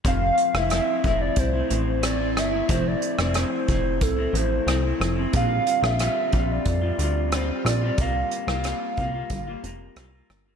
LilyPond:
<<
  \new Staff \with { instrumentName = "Soft synth lead" } { \time 4/4 \key f \major \tempo 4 = 91 f''8. e''4 d''16 c''4 d''8 e''8 | c''16 d''8. c''4 a'8 c''4 r8 | f''8. e''4 d''4~ d''16 c''8 d''8 | f''2.~ f''8 r8 | }
  \new Staff \with { instrumentName = "Clean electric guitar" } { \time 4/4 \key f \major <f a c'>8. <a c' e'>16 <f a c' e'>8 <f a c' e'>8. <a c' e'>16 <f a c' e'>8 <f a c' e'>16 <a c' e'>8 <a c' e'>16 | <f a c' e'>8. <a c' e'>16 <f a c' e'>8 <f a c' e'>8. <a c' e'>16 <f a c' e'>8 <f a c' e'>16 <a c' e'>8 <a c' e'>16 | <bes, d g c' f'>8. <g c' f'>16 <bes, d g c' f'>8 <d g c' f'>8. <g c' f'>16 <d g c' f'>8 <bes, d g c' f'>16 <g c' f'>8 <g c' f'>16 | <c g bes f'>8. <g bes f'>16 <c g bes f'>8 <c g bes f'>16 <g bes f'>8 <g bes f'>16 <c g bes f'>8 <c g bes f'>16 <g bes f'>8 <g bes f'>16 | }
  \new Staff \with { instrumentName = "Analog synth bass" } { \clef bass \time 4/4 \key f \major f,,8 r16 f,,8 r16 f,,8 c,8 a,,4 g,,8 | f,,8 r16 f,,8 r16 f,,8 c,8 a,,8 c,8 f,,8 | bes,,8 r16 bes,,8 r16 bes,,8 f,8 d,4 bes,,8 | c,8 r16 c,8 r16 c,8 g,,8 f,,8 c,8 g,,8 | }
  \new DrumStaff \with { instrumentName = "Drums" } \drummode { \time 4/4 <hh bd>8 hh16 ss16 <hh ss>8 <hh bd>8 <hh bd>8 hh8 <hh ss>8 <hh ss>8 | <hh bd>8 hh16 ss16 <hh ss>8 <hh bd>8 <hh bd>8 hh8 <hh ss>8 <hh ss>8 | <hh bd>8 hh16 ss16 <hh ss>8 <hh bd>8 <hh bd>8 hh8 <hh ss>8 <hh ss>8 | <hh bd>8 hh16 ss16 <hh ss>8 <hh bd>8 <hh bd>8 hh8 <hh ss>8 <hh ss>8 | }
>>